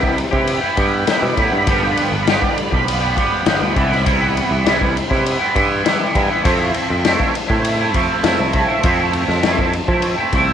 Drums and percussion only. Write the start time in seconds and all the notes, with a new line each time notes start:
0.03 kick
0.18 ride
0.33 kick
0.47 ride
0.77 kick, ride
1.07 snare, ride
1.37 kick, ride
1.67 kick, ride
1.97 ride
2.27 snare, ride
2.42 kick
2.58 ride
2.72 kick
2.88 ride
3.17 kick, ride
3.46 snare, ride
3.76 kick, ride
3.92 snare
4.06 kick, ride
4.37 ride
4.66 snare, ride
4.81 kick
4.97 ride
5.11 kick, snare
5.26 ride
5.56 kick, ride
5.86 snare, ride
6.15 kick, ride
6.45 kick, ride
6.74 ride
7.05 snare, ride
7.20 kick
7.35 ride
7.50 kick
7.65 ride
7.94 kick, ride
8.24 snare, ride
8.53 kick, ride
8.83 kick, ride
9.13 ride
9.29 snare
9.43 snare, ride
9.58 kick
9.73 ride
9.88 kick
10.02 ride
10.33 kick, ride